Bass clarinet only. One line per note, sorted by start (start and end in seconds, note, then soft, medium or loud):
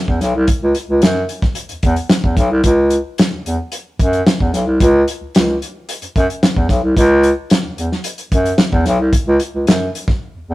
0.08 0.20 E2 medium
0.22 0.33 B1 loud
0.35 0.46 C2 loud
0.63 0.74 C#2 medium
0.90 1.01 C#2 loud
1.04 1.26 F#2 medium
1.71 1.76 E2 medium
1.83 1.95 E2 loud
2.24 2.35 E2 medium
2.37 2.48 B1 loud
2.51 2.62 C2 medium
2.64 2.98 C#2 loud
3.32 3.37 E2 soft
3.46 3.57 E2 medium
4.00 4.22 F#2 loud
4.41 4.52 E2 medium
4.53 4.65 B1 medium
4.67 4.78 C2 medium
4.81 5.03 C#2 loud
5.21 5.26 C#2 soft
5.34 5.57 C#2 medium
6.02 6.08 F#2 soft
6.16 6.27 F#2 loud
6.57 6.68 E2 medium
6.69 6.81 B1 medium
6.83 6.94 C2 medium
6.97 7.31 C#2 loud
7.65 7.70 E2 medium
7.78 7.89 E2 medium
8.32 8.55 F#2 loud
8.73 8.84 E2 loud
8.87 8.98 B1 loud
9.00 9.11 C2 medium
9.27 9.38 C#2 loud
9.55 9.65 C#2 medium
9.68 9.90 F#2 medium
10.35 10.40 E2 soft
10.49 10.54 E2 loud